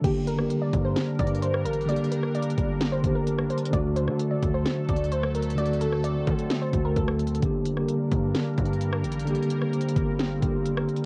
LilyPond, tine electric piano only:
\new Staff \with { instrumentName = "Tine electric piano" } { \time 4/4 \key g \minor \tempo 4 = 130 <d bes g'>8 r16 <d bes g'>4~ <d bes g'>16 r2 | <d bes g'>4~ <d bes g'>16 r4 r16 <d bes g'>4 r8 | <d a fis'>8 r16 <d a fis'>4~ <d a fis'>16 r2 | <d a fis'>4~ <d a fis'>16 r4 r16 <d a fis'>4 r8 |
<d bes g'>8 r16 <d bes g'>4~ <d bes g'>16 r2 | <d bes g'>4~ <d bes g'>16 r4 r16 <d bes g'>4 r8 | }